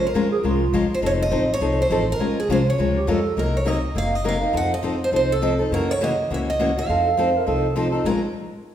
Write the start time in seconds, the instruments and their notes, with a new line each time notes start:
Already playing: upright bass A#1
0.07 steel-string acoustic guitar A#4
0.14 upright bass G#1, steel-string acoustic guitar F3 G#3 C#4 F4 A#4
0.32 clarinet G#4
0.44 upright bass C2, steel-string acoustic guitar F3 G#3 C#4 F4 A#4, clarinet F4
0.73 upright bass A#1, steel-string acoustic guitar F3 G#3 C#4 F4 A#4
0.90 muted upright bass stroke
0.94 steel-string acoustic guitar C5
1.01 upright bass F1, steel-string acoustic guitar F3 C4 D#4 A4
1.06 steel-string acoustic guitar C#5
1.22 steel-string acoustic guitar D#5
1.31 upright bass A1, steel-string acoustic guitar F3 C4 D#4 A4
1.54 steel-string acoustic guitar C#5
1.60 upright bass C2, steel-string acoustic guitar F3 C4 D#4 A4
1.82 steel-string acoustic guitar C5
1.90 upright bass A1, steel-string acoustic guitar F3 C4 D#4 A4
2.12 steel-string acoustic guitar A#4
2.19 upright bass A#1, steel-string acoustic guitar F3 G#3 C#4 F4 A#4
2.40 steel-string acoustic guitar G#4
2.48 upright bass C2, steel-string acoustic guitar F3 G#3 C#4 F4 A#4 C5
2.70 steel-string acoustic guitar C#5
2.78 upright bass C#2, steel-string acoustic guitar F3 G#3 C#4 F4 A#4
2.96 clarinet G4
3.07 upright bass F2, steel-string acoustic guitar F3 G#3 C#4 F4 A#4, clarinet A4
3.37 upright bass C2, steel-string acoustic guitar C3 F#3 A#3 D#4 A#4
3.57 steel-string acoustic guitar C#5
3.65 steel-string acoustic guitar C3 F#3 A#3 D#4 A#4 D#5
3.95 upright bass F#1, steel-string acoustic guitar C3 F#3 A#3 D#4 A#4 F5
4.15 steel-string acoustic guitar D#5
4.24 steel-string acoustic guitar C3 F#3 A#3 D#4 A#4
4.29 steel-string acoustic guitar F5
4.41 steel-string acoustic guitar A#3 D#4 A#4
4.53 upright bass F2, steel-string acoustic guitar F3 C4 D#4 A4
4.57 steel-string acoustic guitar F#5
4.74 steel-string acoustic guitar D#5
4.83 steel-string acoustic guitar F3 C4 D#4 A4
5.04 steel-string acoustic guitar C5
5.12 upright bass C2, steel-string acoustic guitar F3 C4 D#4 A4
5.16 steel-string acoustic guitar C5
5.32 steel-string acoustic guitar A4
5.42 steel-string acoustic guitar F3 C4 D#4 A4
5.59 steel-string acoustic guitar C4 D#4 A4
5.71 upright bass F#2, steel-string acoustic guitar C#3 E3 A#3 C#4 F#4 A#4
5.91 steel-string acoustic guitar C#5
6.01 steel-string acoustic guitar C#3 E3 A#3 C#4 F#4 D#5
6.30 upright bass C#2, steel-string acoustic guitar C#3 E3 A#3 C#4 F#4 E5
6.50 steel-string acoustic guitar D#5
6.59 steel-string acoustic guitar C#3 E3 A#3 C#4 F#4
6.77 steel-string acoustic guitar A#3 C#4 F#4 F5
6.89 upright bass F2, steel-string acoustic guitar F3 C4 D#4 A4
7.06 clarinet A4
7.17 steel-string acoustic guitar F3 C4 D#4 A4, clarinet C5
7.36 clarinet A#4
7.45 upright bass C2, steel-string acoustic guitar F3 C4 D#4 A4 D#5, clarinet A4
7.76 steel-string acoustic guitar F3 C4 D#4 A4, clarinet F4
7.92 steel-string acoustic guitar C4 D#4 A4
8.04 upright bass A#1, steel-string acoustic guitar A#2 F3 G#3 C#4 F4 A#4 A#5, clarinet F4